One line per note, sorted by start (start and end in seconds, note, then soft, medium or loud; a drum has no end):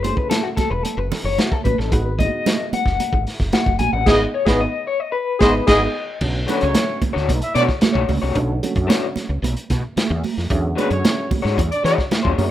0.00 0.11 F#1 loud
0.00 0.10 G#3 medium
0.00 0.70 C#4 medium
0.00 0.70 E4 medium
0.00 0.70 G#4 medium
0.00 0.17 C5 medium
0.04 closed hi-hat medium
0.04 muted conga medium
0.10 0.73 A3 medium
0.17 0.29 B4 medium
0.17 kick medium
0.30 0.43 A4 medium
0.30 snare loud
0.30 closed hi-hat loud
0.30 high conga medium
0.43 0.48 F#4 medium
0.57 0.70 A4 loud
0.57 muted fretless electric bass stroke soft
0.57 kick medium
0.57 snare soft
0.57 closed hi-hat medium
0.57 muted conga medium
0.70 0.82 E1 medium
0.70 0.83 B4 medium
0.83 0.98 A4 loud
0.83 closed hi-hat medium
0.83 muted conga medium
0.97 1.09 F#1 medium
0.97 1.11 B4 medium
1.11 1.24 A4 medium
1.11 snare soft
1.11 open hi-hat medium
1.11 low conga medium
1.24 1.36 F#1 medium
1.24 1.38 C#5 loud
1.38 1.52 F#4 medium
1.38 snare loud
1.38 closed hi-hat medium
1.38 high conga medium
1.52 1.64 A4 medium
1.52 kick loud
1.52 high conga soft
1.64 1.77 A1 medium
1.64 1.79 B4 medium
1.64 kick medium
1.64 closed hi-hat medium
1.64 high conga medium
1.78 1.90 A1 medium
1.78 1.92 A4 medium
1.78 snare soft
1.91 2.27 G#1 loud
1.91 2.08 G#3 medium
1.91 2.08 B3 medium
1.91 2.08 D#4 medium
1.91 2.08 F#4 medium
1.91 2.19 B4 loud
1.91 kick loud
1.91 closed hi-hat medium
2.18 2.84 G#3 medium
2.18 2.84 B3 medium
2.18 2.85 D#4 medium
2.18 2.25 E4 medium
2.18 2.69 D#5 loud
2.18 kick loud
2.18 closed hi-hat medium
2.18 muted conga medium
2.25 2.88 F#4 medium
2.46 snare loud
2.46 closed hi-hat loud
2.46 high conga medium
2.72 3.23 F#5 loud
2.72 muted fretless electric bass stroke soft
2.72 closed hi-hat medium
2.72 muted conga medium
2.86 2.98 F#1 medium
2.86 kick loud
2.86 snare soft
3.00 closed hi-hat loud
3.00 muted conga medium
3.13 3.24 G#1 medium
3.13 kick loud
3.27 snare soft
3.27 open hi-hat medium
3.40 3.51 F#1 medium
3.40 kick medium
3.40 snare soft
3.53 3.78 F#5 loud
3.53 snare loud
3.53 closed hi-hat medium
3.53 high conga medium
3.66 3.78 F#1 medium
3.66 kick loud
3.66 high conga soft
3.79 3.91 A#1 medium
3.79 3.93 G#5 loud
3.79 closed hi-hat medium
3.79 high conga medium
3.92 4.04 A1 medium
3.92 4.07 F#5 loud
4.06 4.25 G#1 loud
4.06 4.25 G#3 loud
4.06 4.20 B3 loud
4.06 4.25 B3 loud
4.06 4.25 D#4 loud
4.06 4.20 G#4 loud
4.06 4.25 G#4 loud
4.06 4.20 D#5 loud
4.06 4.35 D#5 loud
4.06 kick loud
4.06 snare loud
4.06 crash medium
4.34 4.46 C#5 medium
4.46 4.65 G#1 loud
4.46 4.65 G#3 loud
4.46 4.60 B3 medium
4.46 4.65 B3 loud
4.46 4.65 D#4 loud
4.46 4.60 G#4 medium
4.46 4.66 G#4 loud
4.46 4.60 B4 medium
4.46 4.60 D#5 medium
4.46 kick loud
4.46 snare medium
4.61 4.85 D#5 loud
4.87 5.00 C#5 loud
5.00 5.12 D#5 medium
5.12 5.40 B4 loud
5.39 5.59 G#1 loud
5.39 5.59 G#3 loud
5.39 5.53 B3 loud
5.39 5.59 B3 loud
5.39 5.59 D#4 loud
5.39 5.54 G#4 loud
5.39 5.60 G#4 loud
5.39 5.54 C5 medium
5.39 5.54 D#5 loud
5.39 kick loud
5.39 snare loud
5.54 5.67 B4 medium
5.67 5.86 G#1 medium
5.67 5.86 G#3 loud
5.67 5.81 B3 loud
5.67 5.86 B3 loud
5.67 5.86 D#4 loud
5.67 5.81 G#4 loud
5.67 5.86 G#4 loud
5.67 5.81 D#5 loud
5.67 6.18 D#5 medium
5.67 kick loud
5.67 snare loud
5.67 crash medium
6.21 6.44 B1 loud
6.21 6.38 D3 medium
6.21 6.38 F#3 medium
6.21 6.38 A3 medium
6.21 6.38 C#4 medium
6.21 kick loud
6.21 crash loud
6.46 7.14 D3 medium
6.46 7.14 F#3 medium
6.46 6.63 A3 loud
6.46 7.14 A3 medium
6.46 6.59 B3 medium
6.46 7.14 C#4 medium
6.46 6.64 D4 medium
6.46 6.64 F#4 medium
6.46 6.59 B4 medium
6.46 6.64 C#5 loud
6.46 closed hi-hat medium
6.46 muted conga medium
6.61 6.74 C#2 loud
6.61 6.99 C#4 medium
6.61 7.00 C#5 medium
6.61 closed hi-hat soft
6.75 snare loud
6.75 closed hi-hat loud
6.75 high conga medium
7.02 muted fretless electric bass stroke soft
7.02 kick loud
7.02 closed hi-hat medium
7.02 muted conga medium
7.13 7.27 D2 medium
7.13 7.31 A3 medium
7.13 7.31 D4 medium
7.13 7.30 F#4 medium
7.13 7.30 C#5 medium
7.13 snare soft
7.29 7.40 B1 loud
7.29 kick medium
7.29 closed hi-hat medium
7.29 muted conga medium
7.42 7.53 E4 medium
7.42 7.53 E5 medium
7.42 closed hi-hat medium
7.54 7.67 B2 loud
7.54 7.71 A3 medium
7.54 7.71 D4 medium
7.54 7.63 D4 medium
7.54 7.71 F#4 medium
7.54 7.72 C#5 medium
7.54 7.63 D5 loud
7.54 snare soft
7.54 closed hi-hat medium
7.54 muted conga soft
7.68 kick medium
7.68 snare soft
7.81 snare loud
7.81 closed hi-hat medium
7.81 high conga loud
7.93 8.07 B1 medium
7.93 8.11 A3 medium
7.93 8.11 D4 medium
7.93 8.11 F#4 medium
7.93 8.10 C#5 medium
7.93 kick loud
8.09 8.20 C#2 loud
8.09 open hi-hat medium
8.09 high conga medium
8.22 8.35 C2 medium
8.22 8.35 A3 medium
8.22 8.35 D4 medium
8.22 8.35 F#4 medium
8.22 8.35 C#5 medium
8.35 8.59 B1 loud
8.35 8.52 D3 medium
8.35 8.52 F#3 medium
8.35 8.52 A3 medium
8.35 8.52 C#4 loud
8.35 kick loud
8.35 closed hi-hat medium
8.63 9.28 D3 medium
8.63 9.29 F#3 medium
8.63 9.29 A3 medium
8.63 9.29 C#4 medium
8.63 closed hi-hat medium
8.63 muted conga medium
8.75 8.88 F#2 medium
8.75 kick loud
8.75 closed hi-hat soft
8.87 9.04 A3 medium
8.87 9.05 D4 medium
8.87 9.05 F#4 loud
8.87 9.05 C#5 medium
8.87 snare loud
8.87 closed hi-hat loud
8.87 high conga medium
9.16 muted fretless electric bass stroke soft
9.16 snare soft
9.16 closed hi-hat medium
9.16 muted conga medium
9.29 9.41 C#2 medium
9.42 9.54 B1 loud
9.42 closed hi-hat medium
9.42 muted conga medium
9.57 closed hi-hat medium
9.70 9.82 B2 medium
9.70 kick loud
9.70 snare soft
9.70 closed hi-hat medium
9.70 muted conga soft
9.96 muted fretless electric bass stroke soft
9.96 snare loud
9.96 closed hi-hat medium
9.96 high conga medium
10.10 10.22 E2 medium
10.24 open hi-hat medium
10.24 high conga medium
10.37 10.49 F2 medium
10.37 snare soft
10.50 10.74 E2 loud
10.50 10.67 D3 medium
10.50 10.67 F#3 medium
10.50 10.67 G#3 medium
10.50 10.67 C#4 loud
10.50 kick loud
10.50 closed hi-hat medium
10.76 11.43 D3 medium
10.76 11.43 F#3 medium
10.76 10.92 G#3 medium
10.76 11.43 G#3 medium
10.76 10.84 B3 medium
10.76 10.88 B3 medium
10.76 10.93 D4 medium
10.76 10.93 F#4 medium
10.76 10.88 B4 medium
10.76 10.93 C#5 medium
10.76 closed hi-hat medium
10.76 muted conga medium
10.84 11.47 C#4 loud
10.90 11.02 F#2 medium
10.90 11.29 C#4 medium
10.90 11.29 C#5 medium
10.90 closed hi-hat soft
11.05 snare loud
11.05 closed hi-hat loud
11.05 high conga medium
11.31 muted fretless electric bass stroke soft
11.31 kick medium
11.31 open hi-hat soft
11.31 muted conga medium
11.42 11.56 G#2 medium
11.42 11.61 G#3 medium
11.42 11.60 D4 medium
11.42 11.60 F#4 medium
11.42 11.59 C#5 medium
11.42 snare soft
11.58 11.69 E2 loud
11.58 kick medium
11.58 closed hi-hat medium
11.58 muted conga medium
11.71 11.82 D4 medium
11.71 11.82 D5 loud
11.71 closed hi-hat medium
11.83 11.96 E3 loud
11.83 12.00 G#3 medium
11.83 11.96 C#4 medium
11.83 12.01 D4 medium
11.83 12.01 F#4 medium
11.83 12.01 C#5 loud
11.83 11.96 C#5 loud
11.83 snare soft
11.83 closed hi-hat medium
11.98 kick medium
11.98 snare soft
12.11 snare loud
12.11 closed hi-hat medium
12.11 high conga medium
12.23 12.37 E2 medium
12.23 12.45 G#3 medium
12.23 12.45 D4 medium
12.23 12.45 F#4 medium
12.23 12.44 C#5 medium
12.23 kick loud
12.38 12.50 F#2 loud
12.38 open hi-hat medium
12.38 high conga medium